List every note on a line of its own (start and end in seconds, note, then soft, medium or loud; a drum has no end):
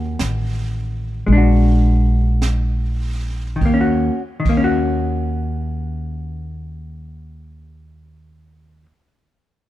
0.00 0.15 D#2 medium
0.00 1.28 D#3 soft
0.00 1.26 A#3 soft
0.00 1.29 C#4 medium
0.00 1.29 F#4 soft
0.19 1.24 A1 medium
0.19 brush sweep soft
0.19 snare soft
0.19 hi-hat pedal soft
1.27 3.58 A#1 medium
1.27 3.61 G#3 soft
1.27 brush sweep soft
1.33 3.64 D4 soft
1.38 3.66 F#4 soft
2.42 brush sweep soft
2.42 snare soft
2.42 hi-hat pedal soft
3.56 4.09 D#3 soft
3.61 4.08 D#2 medium
3.61 kick soft
3.61 ride soft
3.65 4.14 A#3 soft
3.74 4.18 C#4 soft
3.81 4.21 F#4 soft
4.40 8.83 D#3 soft
4.45 8.85 D#2 medium
4.45 8.93 A#3 soft
4.45 kick soft
4.45 ride soft
4.57 9.01 C#4 soft
4.64 9.07 F#4 medium